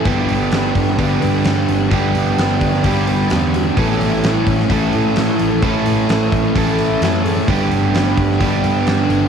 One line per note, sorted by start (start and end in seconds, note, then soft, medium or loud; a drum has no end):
0.05 0.25 G1 medium
0.05 0.98 G2 medium
0.05 0.97 D3 medium
0.05 0.99 G3 medium
0.05 0.51 B3 medium
0.05 0.99 B3 loud
0.05 1.00 D4 loud
0.05 1.00 G4 medium
0.05 kick loud
0.05 open hi-hat medium
0.29 0.49 G1 loud
0.29 open hi-hat medium
0.52 0.72 G1 medium
0.52 0.98 B3 medium
0.52 snare loud
0.52 open hi-hat medium
0.75 0.95 G1 loud
0.75 1.45 D4 medium
0.75 kick medium
0.75 open hi-hat medium
0.98 1.18 G1 medium
0.98 1.89 G2 medium
0.98 1.90 D3 medium
0.98 1.91 G3 medium
0.98 1.21 B3 medium
0.98 1.91 B3 medium
0.98 1.91 D4 medium
0.98 1.91 G4 medium
0.98 kick medium
0.98 open hi-hat medium
1.22 1.42 G2 medium
1.22 1.90 B3 medium
1.22 open hi-hat medium
1.45 1.65 G2 medium
1.45 2.60 D4 medium
1.45 snare loud
1.45 open hi-hat medium
1.69 1.88 G1 medium
1.69 open hi-hat medium
1.91 2.11 G1 medium
1.91 2.82 G2 medium
1.91 2.82 D3 medium
1.91 2.83 G3 medium
1.91 2.37 B3 medium
1.91 2.84 B3 medium
1.91 2.84 D4 loud
1.91 2.84 G4 loud
1.91 kick loud
1.91 open hi-hat medium
2.15 2.34 G1 medium
2.15 open hi-hat medium
2.38 2.58 G1 medium
2.38 2.83 B3 medium
2.38 snare loud
2.38 open hi-hat medium
2.61 2.81 G1 medium
2.61 3.30 D4 medium
2.61 kick medium
2.61 open hi-hat medium
2.74 snare soft
2.83 3.23 G1 medium
2.83 3.75 G2 medium
2.83 3.76 D3 medium
2.83 3.76 G3 medium
2.83 3.07 B3 medium
2.83 3.76 B3 medium
2.83 3.76 D4 medium
2.83 3.77 G4 medium
2.83 kick medium
2.83 open hi-hat medium
3.07 3.78 B3 medium
3.07 open hi-hat medium
3.30 3.70 E2 loud
3.30 3.77 D4 medium
3.30 snare loud
3.30 open hi-hat medium
3.54 3.77 F#4 medium
3.54 open hi-hat medium
3.77 3.97 A1 medium
3.77 4.70 A2 medium
3.77 4.70 E3 loud
3.77 4.69 E3 medium
3.77 4.71 A3 medium
3.77 4.72 C#4 loud
3.77 4.72 A4 loud
3.77 kick medium
3.77 open hi-hat medium
4.00 4.20 A1 loud
4.00 snare soft
4.00 open hi-hat medium
4.23 4.43 A1 loud
4.23 4.92 A3 medium
4.23 snare loud
4.23 open hi-hat medium
4.47 4.66 A1 medium
4.47 5.15 C#4 medium
4.47 kick medium
4.47 open hi-hat medium
4.60 snare soft
4.70 4.89 A1 medium
4.70 5.61 A2 medium
4.70 5.62 E3 medium
4.70 5.62 A3 medium
4.70 5.62 C#4 medium
4.70 5.63 A4 medium
4.70 kick medium
4.70 open hi-hat medium
4.93 5.14 A2 medium
4.93 6.09 A3 medium
4.93 open hi-hat soft
5.16 5.36 A2 medium
5.16 6.31 C#4 medium
5.16 snare loud
5.16 open hi-hat medium
5.39 5.60 A1 medium
5.39 open hi-hat medium
5.62 5.82 A1 medium
5.62 6.54 A2 medium
5.62 6.55 E3 medium
5.62 6.54 E3 medium
5.62 6.55 A3 medium
5.62 6.55 C#4 medium
5.62 6.55 A4 loud
5.62 kick loud
5.62 open hi-hat medium
5.86 6.06 A1 medium
5.86 open hi-hat medium
6.09 6.28 A1 medium
6.09 6.78 A3 medium
6.09 snare loud
6.09 open hi-hat medium
6.32 6.52 A1 medium
6.32 7.01 C#4 medium
6.32 kick medium
6.32 open hi-hat medium
6.55 6.94 A1 medium
6.55 7.47 A2 medium
6.55 7.48 E3 medium
6.55 7.47 E3 medium
6.55 7.48 A3 medium
6.55 7.48 C#4 medium
6.55 7.48 A4 loud
6.55 kick medium
6.55 open hi-hat medium
6.79 7.48 A3 medium
6.79 open hi-hat medium
7.01 7.40 F#2 loud
7.01 7.48 C#4 medium
7.01 snare loud
7.01 open hi-hat medium
7.25 7.48 G#4 medium
7.25 open hi-hat medium
7.48 7.67 G1 medium
7.48 8.39 G2 loud
7.48 8.39 D3 medium
7.48 8.41 G3 medium
7.48 7.94 B3 medium
7.48 8.41 B3 medium
7.48 8.42 D4 loud
7.48 8.42 G4 loud
7.48 kick medium
7.48 open hi-hat medium
7.71 7.90 G1 loud
7.71 open hi-hat medium
7.95 8.14 G1 medium
7.95 8.40 B3 medium
7.95 snare loud
7.95 open hi-hat medium
8.17 8.37 G1 medium
8.17 8.86 D4 medium
8.17 kick medium
8.17 open hi-hat medium
8.31 snare soft
8.40 8.60 G1 medium
8.40 9.28 G2 medium
8.40 9.28 D3 medium
8.40 9.28 G3 medium
8.40 8.63 B3 medium
8.40 9.28 B3 medium
8.40 9.28 D4 medium
8.40 9.28 G4 medium
8.40 kick medium
8.40 open hi-hat medium
8.64 8.83 G2 medium
8.64 9.28 B3 medium
8.64 open hi-hat medium
8.87 9.06 G2 loud
8.87 9.28 D4 medium
8.87 snare loud
8.87 open hi-hat medium
9.10 9.28 G1 medium
9.10 open hi-hat medium